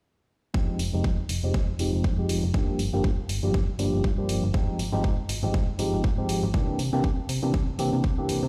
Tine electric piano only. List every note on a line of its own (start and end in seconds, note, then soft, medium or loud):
0.54 0.78 F3 medium
0.54 0.78 G#3 medium
0.54 0.78 C4 medium
0.54 0.78 D#4 medium
0.54 0.78 G4 loud
0.93 1.07 F3 medium
0.93 1.07 G#3 medium
0.93 1.07 C4 medium
0.93 1.07 D#4 medium
0.93 1.07 G4 loud
1.44 1.57 F3 medium
1.44 1.57 G#3 medium
1.44 1.57 C4 medium
1.44 1.57 D#4 medium
1.44 1.58 G4 medium
1.80 2.03 F3 medium
1.80 2.04 G#3 medium
1.80 2.04 C4 medium
1.80 2.04 D#4 medium
1.80 2.04 G4 medium
2.18 2.42 F3 medium
2.18 2.42 G#3 medium
2.18 2.42 C4 medium
2.18 2.42 D#4 medium
2.18 2.42 G4 medium
2.54 2.78 F3 medium
2.54 2.78 G3 medium
2.54 2.79 A#3 medium
2.54 2.79 D4 medium
2.54 2.79 G4 medium
2.93 3.07 F3 loud
2.93 3.07 G3 medium
2.93 3.07 A#3 medium
2.93 3.07 D4 medium
2.93 3.07 G4 loud
3.43 3.57 F3 medium
3.43 3.57 G3 medium
3.43 3.57 A#3 medium
3.43 3.57 D4 medium
3.43 3.57 G4 medium
3.79 4.03 F3 medium
3.79 4.03 G3 medium
3.79 4.03 A#3 medium
3.79 4.03 D4 medium
3.79 4.03 G4 medium
4.18 4.42 F3 medium
4.18 4.42 G3 medium
4.18 4.42 A#3 medium
4.18 4.42 D4 medium
4.18 4.42 G4 medium
4.54 4.78 F3 medium
4.54 4.78 G#3 medium
4.54 4.78 C4 medium
4.54 4.78 D#4 medium
4.54 4.78 G4 loud
4.92 5.07 F3 loud
4.92 5.07 G#3 medium
4.92 5.07 C4 medium
4.92 5.07 D#4 medium
4.92 5.07 G4 loud
5.43 5.57 F3 medium
5.43 5.57 G#3 medium
5.43 5.57 C4 medium
5.43 5.57 D#4 medium
5.43 5.57 G4 medium
5.79 6.03 F3 medium
5.79 6.03 G#3 medium
5.79 6.03 C4 medium
5.79 6.03 D#4 medium
5.79 6.03 G4 medium
6.18 6.42 F3 medium
6.18 6.42 G#3 medium
6.18 6.42 C4 medium
6.18 6.42 D#4 medium
6.18 6.42 G4 medium
6.54 6.78 E3 medium
6.54 6.78 A#3 medium
6.54 6.78 C4 medium
6.54 6.78 D4 medium
6.54 6.78 G4 loud
6.93 7.07 E3 medium
6.93 7.07 A#3 medium
6.93 7.07 C4 medium
6.93 7.07 D4 medium
6.93 7.07 G4 loud
7.43 7.57 E3 medium
7.43 7.57 A#3 medium
7.43 7.57 C4 medium
7.43 7.57 D4 medium
7.43 7.57 G4 medium
7.79 8.03 E3 medium
7.79 8.03 A#3 medium
7.79 8.03 C4 medium
7.79 8.03 D4 medium
7.79 8.03 G4 medium
8.18 8.42 E3 medium
8.18 8.42 A#3 medium
8.18 8.42 C4 medium
8.18 8.42 D4 medium
8.18 8.42 G4 medium